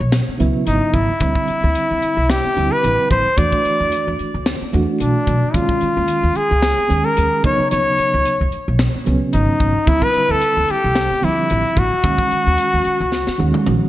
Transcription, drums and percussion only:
0.12 snare, closed hi-hat
0.40 closed hi-hat
0.67 closed hi-hat
0.94 kick, closed hi-hat
1.20 kick, closed hi-hat
1.35 kick
1.48 closed hi-hat
1.75 closed hi-hat
2.02 closed hi-hat
2.30 snare, closed hi-hat
2.57 closed hi-hat
2.84 closed hi-hat
3.11 kick, closed hi-hat
3.38 kick, closed hi-hat
3.52 kick
3.65 closed hi-hat
3.92 closed hi-hat
4.19 closed hi-hat
4.46 snare, closed hi-hat
4.73 closed hi-hat
5.00 closed hi-hat
5.27 kick, closed hi-hat
5.54 kick, closed hi-hat
5.69 kick
5.81 closed hi-hat
6.08 closed hi-hat
6.35 closed hi-hat
6.62 snare, closed hi-hat
6.90 closed hi-hat
7.17 closed hi-hat
7.44 kick, closed hi-hat
7.71 closed hi-hat
7.98 closed hi-hat
8.25 closed hi-hat
8.52 closed hi-hat
8.79 snare, closed hi-hat
9.06 closed hi-hat
9.33 closed hi-hat
9.60 kick, closed hi-hat
9.87 kick, closed hi-hat
10.02 kick
10.14 closed hi-hat
10.41 closed hi-hat
10.69 closed hi-hat
10.96 snare, closed hi-hat
11.23 closed hi-hat
11.50 closed hi-hat
11.77 kick, closed hi-hat
12.03 kick, closed hi-hat
12.18 kick
12.31 closed hi-hat
12.58 closed hi-hat
12.85 closed hi-hat
13.12 snare
13.27 snare
13.54 high tom
13.66 mid tom

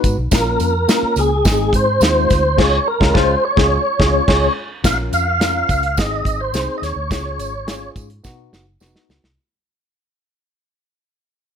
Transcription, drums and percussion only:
0.04 kick, closed hi-hat, tambourine
0.31 kick, snare, closed hi-hat, tambourine
0.60 closed hi-hat, tambourine
0.89 snare, closed hi-hat, tambourine
1.16 closed hi-hat, tambourine
1.45 kick, snare, closed hi-hat, tambourine
1.73 kick, closed hi-hat, tambourine
2.01 snare, closed hi-hat, tambourine
2.30 kick, snare, closed hi-hat, tambourine
2.58 kick, snare, crash
3.01 kick, snare
3.15 kick, snare
3.57 kick, snare
4.00 kick, snare
4.28 kick, snare, crash
4.84 kick, snare, closed hi-hat, tambourine
5.13 closed hi-hat, tambourine
5.41 snare, closed hi-hat, tambourine
5.69 kick, closed hi-hat, tambourine
5.83 closed hi-hat
5.97 kick, snare, closed hi-hat, tambourine
6.25 kick, closed hi-hat, tambourine
6.54 snare, closed hi-hat, tambourine
6.83 snare, closed hi-hat, tambourine
7.11 kick, snare, closed hi-hat, tambourine
7.39 closed hi-hat, tambourine
7.68 snare, closed hi-hat, tambourine
7.96 kick, closed hi-hat, tambourine
8.10 closed hi-hat
8.24 kick, snare, tambourine
8.53 snare, tambourine
8.80 snare, tambourine
8.96 snare
9.10 snare, tambourine
9.24 snare

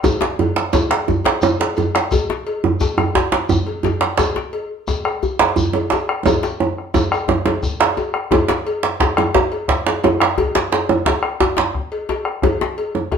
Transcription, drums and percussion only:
0.03 bombo rim, bombo low, cowbell, djembe tone, djembe bass, shekere
0.21 djembe slap, djembe tone
0.39 cowbell, djembe bass
0.56 djembe slap
0.73 bombo rim, bombo low, cowbell, djembe tone, shekere
0.90 bombo rim, cowbell, djembe slap
1.08 djembe bass, shekere
1.24 cowbell, djembe slap, djembe tone
1.42 bombo rim, djembe tone, shekere
1.60 cowbell, djembe slap
1.76 cowbell, djembe bass, shekere
1.95 bombo rim, djembe slap
2.11 bombo rim, bombo low, cowbell, djembe bass, shekere
2.30 djembe slap, djembe tone
2.47 cowbell
2.64 djembe bass
2.80 bombo rim, bombo low, cowbell, djembe tone, shekere
2.98 bombo rim, cowbell, djembe bass
3.15 djembe slap, djembe bass, shekere
3.32 djembe slap, djembe tone
3.49 bombo rim, bombo low, djembe bass, shekere
3.66 cowbell
3.83 cowbell, djembe tone, djembe bass, shekere
4.01 bombo rim, djembe slap
4.17 bombo rim, bombo low, cowbell, djembe slap, djembe bass, shekere
4.36 djembe slap, djembe tone
4.53 cowbell
4.88 bombo rim, bombo low, cowbell, djembe tone, shekere
5.05 bombo rim, cowbell
5.23 djembe bass, shekere
5.39 cowbell, djembe slap, djembe tone
5.56 bombo rim, bombo low, djembe bass, shekere
5.73 cowbell, djembe tone
5.90 cowbell, djembe slap, djembe tone, shekere
6.09 bombo rim
6.26 bombo rim, bombo low, cowbell, djembe tone, djembe bass, shekere
6.43 bombo rim, djembe slap, djembe tone, shekere
6.60 djembe tone
6.78 bombo rim
6.94 bombo low, cowbell, djembe tone, shekere
7.12 bombo rim, cowbell, djembe slap, shekere
7.28 bombo rim, djembe slap, djembe tone, djembe bass
7.46 cowbell, djembe slap, djembe tone
7.63 bombo rim, bombo low, shekere
7.80 bombo rim, cowbell, djembe slap
7.97 cowbell, djembe tone, shekere
8.14 bombo rim, djembe slap
8.31 bombo rim, bombo low, cowbell, djembe tone, djembe bass
8.48 djembe slap, djembe tone
8.67 cowbell
8.83 djembe slap
9.00 bombo rim, bombo low, cowbell, djembe slap, djembe tone
9.17 bombo rim, cowbell, djembe tone
9.34 djembe slap, djembe bass
9.52 cowbell
9.68 bombo rim, bombo low, djembe slap
9.87 cowbell, djembe slap
10.04 cowbell, djembe tone
10.20 bombo rim, djembe slap
10.38 bombo rim, bombo low, cowbell, djembe bass
10.55 djembe slap, djembe tone
10.72 cowbell, djembe slap
10.89 djembe tone
11.05 bombo rim, bombo low, cowbell, djembe slap, djembe tone
11.23 bombo rim
11.40 djembe slap, djembe bass
11.57 djembe slap, djembe tone
11.74 bombo rim, bombo low
11.92 cowbell
12.09 cowbell, djembe tone
12.25 bombo rim
12.42 bombo rim, bombo low, cowbell, djembe tone, djembe bass
12.61 djembe slap, djembe tone
12.78 cowbell
12.95 djembe tone
13.12 bombo rim, bombo low, cowbell, djembe tone

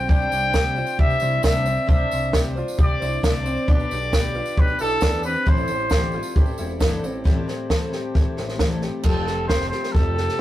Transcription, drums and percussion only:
0.09 kick, tambourine
0.22 tambourine
0.32 tambourine
0.44 tambourine
0.53 kick, snare, tambourine
0.76 tambourine
0.87 tambourine
0.99 kick
1.09 tambourine
1.20 tambourine
1.43 kick, snare, tambourine
1.66 tambourine
1.77 tambourine
1.89 kick, tambourine
2.11 tambourine
2.23 tambourine
2.33 kick, snare, tambourine
2.57 tambourine
2.68 tambourine
2.79 kick
3.02 tambourine
3.13 tambourine
3.23 kick, snare, tambourine
3.46 tambourine
3.57 tambourine
3.68 kick, tambourine
3.80 tambourine
3.91 tambourine
4.02 tambourine
4.13 kick, snare, tambourine
4.34 tambourine
4.46 tambourine
4.57 kick
4.68 tambourine
4.79 tambourine
4.90 tambourine
5.01 kick, snare, tambourine
5.23 tambourine
5.35 tambourine
5.46 kick, tambourine
5.57 tambourine
5.68 tambourine
5.79 tambourine
5.90 kick, snare, tambourine
6.11 tambourine
6.23 tambourine
6.36 kick
6.46 tambourine
6.58 tambourine
6.69 tambourine
6.80 kick, snare, tambourine
6.92 tambourine
7.04 tambourine
7.25 kick, snare
7.48 snare
7.70 kick, snare
7.92 snare
8.15 kick, snare
8.37 snare
8.49 snare
8.59 kick, snare
8.82 snare
9.03 kick, snare, crash
9.27 snare
9.49 kick, snare
9.61 snare
9.72 snare
9.83 snare
9.95 kick, snare
10.17 snare
10.29 snare

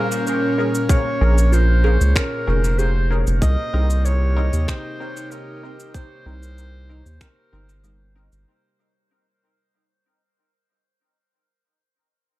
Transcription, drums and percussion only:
0.12 cabasa
0.27 cabasa
0.75 cabasa
0.89 kick, cabasa
1.38 cabasa
1.53 cabasa
2.01 cabasa
2.16 finger snap, kick, cabasa
2.64 cabasa
2.79 cabasa
3.27 cabasa
3.42 kick, cabasa
3.90 cabasa
4.05 cabasa
4.53 cabasa
4.68 finger snap, kick, cabasa
5.17 cabasa
5.32 cabasa
5.80 cabasa
5.94 kick, cabasa
6.43 cabasa
6.58 cabasa
7.06 cabasa
7.21 finger snap, kick, cabasa
7.69 cabasa
7.84 cabasa
8.32 cabasa

